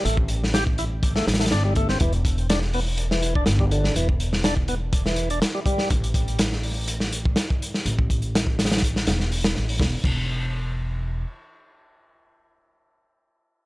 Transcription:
<<
  \new Staff \with { instrumentName = "Tonewheel organ" } { \time 4/4 \key a \dorian \tempo 4 = 123 a16 r8. g'16 r16 e'16 r8 a16 r16 a16 d'16 g16 a16 c'16 | e16 r8. d'16 r16 b16 r8 e8 d'16 r16 g16 d8 | e16 r8. d'16 r16 b16 r8 e8 d'16 r16 g16 g8 | r1 |
r1 | r1 | r1 | }
  \new Staff \with { instrumentName = "Upright bass" } { \clef bass \time 4/4 \key a \dorian a,,2~ a,,8 a,,8 g,,4 | e,,2. g,,4 | e,,2. r4 | a,,2. r4 |
a,,2~ a,,8 e,,4 a,,8 | e,,8 e,,2~ e,,8 r4 | r1 | }
  \new DrumStaff \with { instrumentName = "Drums" } \drummode { \time 4/4 hh16 bd16 hh16 sn16 <hh sn>16 bd16 hh8 <hh bd>16 sn16 <hh sn>32 <hh sn>32 <hh sn>32 <hh sn>32 <hh sn>8 <hh bd>16 sn16 | <hh bd>16 hh16 <hh bd>16 hh16 <hh sn>16 sn16 hho8 hh16 sn16 hh16 bd16 <hh sn>16 bd16 hh16 sn16 | hh16 bd16 hh16 sn16 <hh sn>16 bd16 hh8 <hh bd>16 sn16 hh16 hh16 <hh sn>8 <hh bd>16 sn16 | <hh bd>16 hh16 <hh bd>16 hh16 <hh sn>16 sn16 hho8 hh16 sn16 hh16 bd16 <hh sn>16 bd16 hh16 sn16 |
hh16 bd16 <hh bd>16 hh16 <hh sn>16 bd16 <hh sn>32 <hh sn>32 <hh sn>32 <hh sn>32 <hh bd>16 sn16 <hh sn>16 sn16 hho16 <hh sn>16 sn16 hho16 | <bd sn>8 <cymc bd>8 r4 r4 r4 | r4 r4 r4 r4 | }
>>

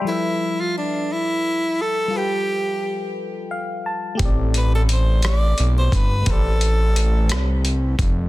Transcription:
<<
  \new Staff \with { instrumentName = "FM electric piano" } { \time 6/8 \key a \minor \tempo 4. = 58 << { <d'' g''>16 r2 r8. | r2 f''8 a''8 | r2. | r2. | } \\ { <f g a' b' e''>2. | <g f' a' b' g''>2. | <a c' g' a' d''>2. | <a g' b' c'' d''>2. | } >> }
  \new Staff \with { instrumentName = "Tenor saxophone" } { \time 6/8 \key a \minor e'8. f'16 d'8 e'4 a'8 | g'4. r4. | r8 b'16 a'16 c''8 d''8. c''16 b'8 | a'2 r4 | }
  \new Staff \with { instrumentName = "Analog synth bass" } { \clef bass \time 6/8 \key a \minor r2. | r2. | a,,2 b,,8 g,,8 | a,,4. c,4 f,,8 | }
  \new DrumStaff \with { instrumentName = "Drums" } \drummode { \time 6/8 r4. r4. | r4. r4. | <hh bd>8 hh8 hh8 <hh ss>8 hh8 <hh bd>8 | <hh bd>8 hh8 hh8 <hh ss>8 hh8 <hh bd>8 | }
>>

